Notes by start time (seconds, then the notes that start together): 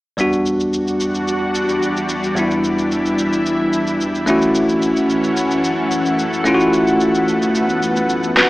0.17 E2 E3 G3 B3 D4 F#4, shaker
0.33 shaker
0.46 shaker
0.60 shaker
0.74 shaker
0.88 shaker
1.00 shaker
1.15 shaker
1.28 shaker
1.55 shaker
1.69 shaker
1.83 shaker
1.97 shaker
2.09 shaker
2.24 shaker
2.35 E2 G3 B3 D4 E4, shaker
2.51 shaker
2.64 shaker
2.79 shaker
2.92 shaker
3.06 shaker
3.19 shaker
3.33 shaker
3.46 shaker
3.73 shaker
3.87 shaker
4.01 shaker
4.15 shaker
4.26 F#2 A3 C#4 E4 F#4 F#5, shaker
4.42 shaker
4.55 shaker
4.69 shaker
4.82 shaker
4.97 shaker
5.10 shaker
5.24 shaker
5.37 shaker
5.51 shaker
5.64 shaker
5.91 shaker
6.05 shaker
6.19 shaker
6.33 shaker
6.44 A3 B3 C#4 E4 F4, shaker
6.54 F#4
6.60 shaker
6.73 shaker
6.87 shaker
7.00 shaker
7.15 shaker
7.28 shaker
7.42 shaker
7.55 shaker
7.69 shaker
7.83 shaker
7.96 shaker
8.09 shaker
8.24 shaker
8.37 F#4 B4, snare, shaker